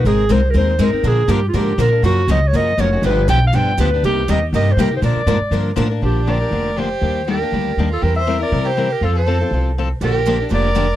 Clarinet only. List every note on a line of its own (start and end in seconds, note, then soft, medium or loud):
0.07 0.34 G#4 medium
0.32 0.52 C5 medium
0.50 0.56 A#4 medium
0.58 0.85 C5 medium
0.83 1.09 A#4 medium
1.07 1.33 G#4 medium
1.32 1.47 G4 medium
1.49 1.57 F4 medium
1.56 1.80 G4 medium
1.81 2.03 A#4 medium
2.06 2.28 F#4 loud
2.31 2.49 D#5 medium
2.48 2.58 C#5 medium
2.56 2.82 D#5 loud
2.81 3.04 C#5 medium
3.06 3.28 B4 loud
3.30 3.44 G5 loud
3.47 3.56 F5 medium
3.55 3.79 G5 loud
3.80 4.02 B4 medium
4.05 4.32 G4 loud
4.30 4.45 D#5 medium
4.55 4.73 D#5 medium
4.72 4.82 C5 medium
4.80 4.95 A#4 medium
4.97 5.00 C5 medium
5.05 5.74 D5 medium
6.05 6.31 G4 medium
6.29 6.81 D5 medium
6.79 7.28 C5 medium
7.30 7.88 A#4 medium
7.93 8.05 A4 medium
8.03 8.15 A#4 medium
8.16 8.39 E5 medium
8.43 8.69 D5 medium
8.67 8.93 C5 medium
8.92 9.06 A#4 medium
9.05 9.17 A4 medium
9.18 9.63 C5 medium
10.04 10.49 A#4 medium
10.54 10.96 D5 medium